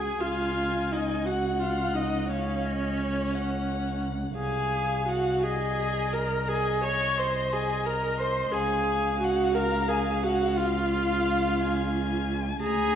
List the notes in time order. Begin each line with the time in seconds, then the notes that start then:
Already playing: C#2 G#4 G#5
0.21 C#2 F4 F5 G#5
0.92 D#4 D#5
1.25 F#4 F#5
1.59 F4 F5
1.94 D#4 D#5
2.29 C#4 C#5 F5
2.65 D#5
3.00 C#5
3.35 F#5
4.37 C2 G#4 F5 G#5
5.08 F#4 F#5
5.43 G#4 D#5 G#5
6.13 A#4 A#5
6.48 G#4 D#5 G#5
6.84 C#5 C#6
7.18 C5 C6
7.53 G#4 G#5
7.85 A#4 A#5
8.20 C5 C6
8.52 C#2 G#4 F5 G#5
9.20 F#4
9.24 F#5
9.54 A#4 A#5
9.88 G#4 G#5
10.23 F#4 F#5
10.57 F4 F5
11.62 G#5
12.61 D2 G#4 G#5 A#5